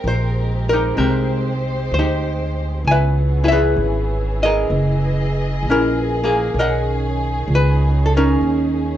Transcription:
0, 0, Header, 1, 4, 480
1, 0, Start_track
1, 0, Key_signature, -4, "major"
1, 0, Tempo, 930233
1, 1463, Time_signature, 4, 2, 24, 8
1, 4630, End_track
2, 0, Start_track
2, 0, Title_t, "Hollow-body jazz guitar"
2, 0, Program_c, 0, 26
2, 0, Note_on_c, 0, 70, 53
2, 39, Note_on_c, 0, 72, 68
2, 328, Note_off_c, 0, 72, 0
2, 352, Note_off_c, 0, 70, 0
2, 358, Note_on_c, 0, 70, 70
2, 377, Note_on_c, 0, 67, 49
2, 381, Note_on_c, 0, 63, 50
2, 498, Note_off_c, 0, 67, 0
2, 500, Note_on_c, 0, 56, 48
2, 501, Note_off_c, 0, 70, 0
2, 504, Note_on_c, 0, 60, 48
2, 505, Note_on_c, 0, 67, 49
2, 507, Note_on_c, 0, 70, 57
2, 788, Note_off_c, 0, 56, 0
2, 790, Note_off_c, 0, 60, 0
2, 790, Note_off_c, 0, 67, 0
2, 791, Note_off_c, 0, 70, 0
2, 1001, Note_on_c, 0, 72, 76
2, 1020, Note_off_c, 0, 63, 0
2, 1025, Note_on_c, 0, 63, 54
2, 1028, Note_on_c, 0, 67, 45
2, 1464, Note_off_c, 0, 63, 0
2, 1464, Note_off_c, 0, 67, 0
2, 1483, Note_on_c, 0, 80, 86
2, 1486, Note_off_c, 0, 72, 0
2, 1502, Note_on_c, 0, 76, 65
2, 1505, Note_on_c, 0, 71, 62
2, 1772, Note_off_c, 0, 76, 0
2, 1774, Note_off_c, 0, 80, 0
2, 1774, Note_on_c, 0, 59, 53
2, 1776, Note_on_c, 0, 64, 53
2, 1781, Note_on_c, 0, 68, 55
2, 1795, Note_off_c, 0, 68, 0
2, 1797, Note_on_c, 0, 76, 94
2, 1811, Note_off_c, 0, 71, 0
2, 1815, Note_on_c, 0, 68, 66
2, 1817, Note_off_c, 0, 59, 0
2, 1819, Note_on_c, 0, 71, 58
2, 2281, Note_off_c, 0, 76, 0
2, 2286, Note_on_c, 0, 75, 79
2, 2289, Note_off_c, 0, 68, 0
2, 2293, Note_off_c, 0, 71, 0
2, 2295, Note_on_c, 0, 68, 52
2, 2296, Note_off_c, 0, 64, 0
2, 2298, Note_on_c, 0, 70, 53
2, 2731, Note_off_c, 0, 75, 0
2, 2940, Note_on_c, 0, 61, 56
2, 2942, Note_off_c, 0, 70, 0
2, 2944, Note_on_c, 0, 64, 40
2, 2948, Note_on_c, 0, 70, 77
2, 3215, Note_off_c, 0, 68, 0
2, 3218, Note_on_c, 0, 58, 57
2, 3226, Note_on_c, 0, 68, 60
2, 3379, Note_off_c, 0, 61, 0
2, 3379, Note_off_c, 0, 64, 0
2, 3395, Note_off_c, 0, 70, 0
2, 3401, Note_on_c, 0, 70, 55
2, 3402, Note_off_c, 0, 58, 0
2, 3404, Note_on_c, 0, 75, 60
2, 3409, Note_on_c, 0, 78, 80
2, 3830, Note_off_c, 0, 68, 0
2, 3887, Note_off_c, 0, 78, 0
2, 3896, Note_on_c, 0, 71, 78
2, 4130, Note_off_c, 0, 71, 0
2, 4158, Note_on_c, 0, 69, 63
2, 4191, Note_off_c, 0, 69, 0
2, 4208, Note_off_c, 0, 70, 0
2, 4214, Note_on_c, 0, 61, 56
2, 4216, Note_on_c, 0, 70, 61
2, 4217, Note_on_c, 0, 63, 53
2, 4331, Note_off_c, 0, 75, 0
2, 4630, Note_off_c, 0, 61, 0
2, 4630, Note_off_c, 0, 63, 0
2, 4630, Note_off_c, 0, 70, 0
2, 4630, End_track
3, 0, Start_track
3, 0, Title_t, "String section"
3, 0, Program_c, 1, 48
3, 0, Note_on_c, 1, 56, 59
3, 0, Note_on_c, 1, 60, 54
3, 0, Note_on_c, 1, 67, 54
3, 0, Note_on_c, 1, 70, 72
3, 492, Note_off_c, 1, 70, 0
3, 502, Note_on_c, 1, 72, 68
3, 1439, Note_off_c, 1, 60, 0
3, 1441, Note_off_c, 1, 56, 0
3, 1443, Note_off_c, 1, 67, 0
3, 1453, Note_off_c, 1, 72, 0
3, 1460, Note_on_c, 1, 68, 72
3, 1466, Note_on_c, 1, 52, 69
3, 1466, Note_on_c, 1, 59, 63
3, 1467, Note_on_c, 1, 61, 59
3, 2413, Note_off_c, 1, 59, 0
3, 2414, Note_off_c, 1, 61, 0
3, 2421, Note_on_c, 1, 75, 63
3, 3362, Note_off_c, 1, 52, 0
3, 3370, Note_off_c, 1, 75, 0
3, 3382, Note_on_c, 1, 61, 61
3, 3386, Note_on_c, 1, 51, 64
3, 4630, Note_off_c, 1, 51, 0
3, 4630, Note_off_c, 1, 61, 0
3, 4630, Note_off_c, 1, 68, 0
3, 4630, End_track
4, 0, Start_track
4, 0, Title_t, "Upright bass"
4, 0, Program_c, 2, 32
4, 20, Note_on_c, 2, 34, 84
4, 489, Note_off_c, 2, 34, 0
4, 505, Note_on_c, 2, 36, 75
4, 970, Note_off_c, 2, 36, 0
4, 987, Note_on_c, 2, 38, 77
4, 1451, Note_off_c, 2, 38, 0
4, 1468, Note_on_c, 2, 37, 82
4, 1931, Note_off_c, 2, 37, 0
4, 1943, Note_on_c, 2, 32, 79
4, 2407, Note_off_c, 2, 32, 0
4, 2424, Note_on_c, 2, 30, 82
4, 2888, Note_off_c, 2, 30, 0
4, 2903, Note_on_c, 2, 34, 76
4, 3366, Note_off_c, 2, 34, 0
4, 3376, Note_on_c, 2, 35, 80
4, 3842, Note_off_c, 2, 35, 0
4, 3858, Note_on_c, 2, 37, 85
4, 4325, Note_off_c, 2, 37, 0
4, 4340, Note_on_c, 2, 39, 74
4, 4630, Note_off_c, 2, 39, 0
4, 4630, End_track
0, 0, End_of_file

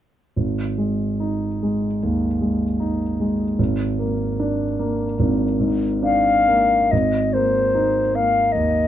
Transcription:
0, 0, Header, 1, 3, 480
1, 0, Start_track
1, 0, Key_signature, -4, "major"
1, 0, Tempo, 832178
1, 211, Time_signature, 4, 2, 24, 8
1, 1169, Tempo, 776197
1, 2129, Tempo, 804290
1, 3089, Tempo, 836820
1, 3569, Tempo, 887574
1, 4049, Tempo, 814111
1, 5207, End_track
2, 0, Start_track
2, 0, Title_t, "Flute"
2, 0, Program_c, 0, 73
2, 3578, Note_on_c, 0, 77, 51
2, 4050, Note_on_c, 0, 75, 42
2, 4059, Note_off_c, 0, 77, 0
2, 4297, Note_on_c, 0, 72, 37
2, 4306, Note_off_c, 0, 75, 0
2, 4781, Note_on_c, 0, 77, 42
2, 4790, Note_off_c, 0, 72, 0
2, 4998, Note_on_c, 0, 75, 39
2, 5007, Note_off_c, 0, 77, 0
2, 5207, Note_off_c, 0, 75, 0
2, 5207, End_track
3, 0, Start_track
3, 0, Title_t, "Grand piano"
3, 0, Program_c, 1, 0
3, 210, Note_on_c, 1, 32, 28
3, 328, Control_c, 1, 64, 127
3, 450, Note_on_c, 1, 56, 18
3, 692, Note_on_c, 1, 63, 22
3, 843, Note_off_c, 1, 56, 0
3, 939, Note_on_c, 1, 56, 23
3, 1074, Note_off_c, 1, 63, 0
3, 1145, Note_off_c, 1, 32, 0
3, 1171, Note_on_c, 1, 39, 25
3, 1312, Note_off_c, 1, 56, 0
3, 1407, Note_on_c, 1, 56, 24
3, 1550, Note_off_c, 1, 39, 0
3, 1646, Note_on_c, 1, 63, 24
3, 1787, Note_off_c, 1, 56, 0
3, 1895, Note_on_c, 1, 56, 23
3, 2031, Note_off_c, 1, 63, 0
3, 2133, Note_on_c, 1, 32, 31
3, 2135, Note_off_c, 1, 56, 0
3, 2140, Control_c, 1, 64, 0
3, 2226, Control_c, 1, 64, 127
3, 2375, Note_on_c, 1, 58, 24
3, 2616, Note_on_c, 1, 62, 32
3, 2756, Note_off_c, 1, 58, 0
3, 2854, Note_on_c, 1, 58, 28
3, 2995, Note_off_c, 1, 62, 0
3, 3068, Note_off_c, 1, 32, 0
3, 3091, Note_on_c, 1, 32, 34
3, 3233, Note_off_c, 1, 58, 0
3, 3324, Note_on_c, 1, 44, 29
3, 3569, Note_on_c, 1, 62, 31
3, 3711, Note_off_c, 1, 44, 0
3, 3815, Note_on_c, 1, 58, 27
3, 3956, Note_off_c, 1, 62, 0
3, 4028, Note_off_c, 1, 32, 0
3, 4052, Note_off_c, 1, 58, 0
3, 4055, Note_on_c, 1, 32, 31
3, 4060, Control_c, 1, 64, 0
3, 4159, Control_c, 1, 64, 127
3, 4305, Note_on_c, 1, 58, 24
3, 4541, Note_on_c, 1, 63, 28
3, 4688, Note_off_c, 1, 58, 0
3, 4777, Note_on_c, 1, 58, 25
3, 4920, Note_off_c, 1, 63, 0
3, 4993, Note_off_c, 1, 32, 0
3, 5015, Note_on_c, 1, 39, 26
3, 5154, Note_off_c, 1, 58, 0
3, 5207, Note_off_c, 1, 39, 0
3, 5207, End_track
0, 0, End_of_file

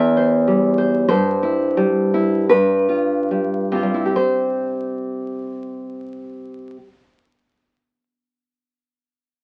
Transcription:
0, 0, Header, 1, 2, 480
1, 0, Start_track
1, 0, Key_signature, 0, "major"
1, 0, Tempo, 1229508
1, 428, Time_signature, 2, 2, 24, 8
1, 428, Tempo, 1405152
1, 908, Tempo, 1675978
1, 2894, End_track
2, 0, Start_track
2, 0, Title_t, "Nylon-string guitar"
2, 0, Program_c, 0, 24
2, 0, Note_on_c, 0, 40, 67
2, 0, Note_on_c, 0, 76, 80
2, 66, Note_on_c, 0, 72, 49
2, 185, Note_on_c, 0, 55, 49
2, 300, Note_off_c, 0, 72, 0
2, 304, Note_on_c, 0, 72, 48
2, 411, Note_off_c, 0, 76, 0
2, 414, Note_off_c, 0, 40, 0
2, 419, Note_off_c, 0, 72, 0
2, 424, Note_on_c, 0, 72, 90
2, 428, Note_off_c, 0, 55, 0
2, 428, Note_on_c, 0, 43, 67
2, 541, Note_on_c, 0, 64, 52
2, 659, Note_on_c, 0, 55, 49
2, 780, Note_off_c, 0, 64, 0
2, 784, Note_on_c, 0, 64, 47
2, 892, Note_off_c, 0, 72, 0
2, 894, Note_off_c, 0, 43, 0
2, 904, Note_off_c, 0, 64, 0
2, 906, Note_on_c, 0, 71, 69
2, 908, Note_off_c, 0, 55, 0
2, 910, Note_on_c, 0, 43, 62
2, 1018, Note_on_c, 0, 65, 39
2, 1140, Note_on_c, 0, 55, 42
2, 1256, Note_on_c, 0, 48, 53
2, 1262, Note_off_c, 0, 65, 0
2, 1265, Note_on_c, 0, 65, 36
2, 1285, Note_off_c, 0, 55, 0
2, 1288, Note_on_c, 0, 55, 42
2, 1319, Note_off_c, 0, 71, 0
2, 1321, Note_on_c, 0, 64, 42
2, 1352, Note_off_c, 0, 65, 0
2, 1353, Note_on_c, 0, 67, 41
2, 1376, Note_off_c, 0, 43, 0
2, 1382, Note_off_c, 0, 64, 0
2, 1383, Note_on_c, 0, 72, 51
2, 2128, Note_off_c, 0, 48, 0
2, 2160, Note_off_c, 0, 55, 0
2, 2225, Note_off_c, 0, 67, 0
2, 2255, Note_off_c, 0, 72, 0
2, 2894, End_track
0, 0, End_of_file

